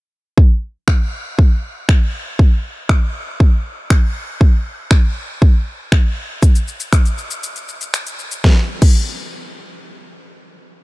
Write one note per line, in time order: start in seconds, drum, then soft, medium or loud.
0.38 kick loud
0.88 finger snap loud
0.88 kick loud
1.39 kick loud
1.89 finger snap loud
1.89 kick loud
2.39 kick loud
2.89 finger snap loud
2.89 kick loud
3.40 kick loud
3.90 finger snap loud
3.90 kick loud
4.41 kick loud
4.91 finger snap loud
4.91 kick loud
5.42 kick loud
5.92 finger snap loud
5.92 kick loud
6.42 kick loud
6.42 closed hi-hat medium
6.42 shaker medium
6.55 closed hi-hat soft
6.55 shaker soft
6.68 shaker medium
6.80 closed hi-hat medium
6.80 shaker medium
6.93 finger snap loud
6.93 kick loud
6.93 closed hi-hat medium
6.93 shaker medium
7.06 closed hi-hat soft
7.06 shaker soft
7.18 shaker soft
7.31 closed hi-hat medium
7.31 shaker medium
7.43 closed hi-hat medium
7.43 shaker medium
7.56 closed hi-hat medium
7.56 shaker medium
7.69 shaker medium
7.81 closed hi-hat soft
7.81 shaker medium
7.94 finger snap loud
7.94 closed hi-hat medium
7.94 shaker medium
8.07 closed hi-hat medium
8.07 shaker soft
8.19 shaker soft
8.31 closed hi-hat medium
8.31 shaker medium
8.44 kick loud
8.44 snare medium
8.82 kick loud
8.82 crash medium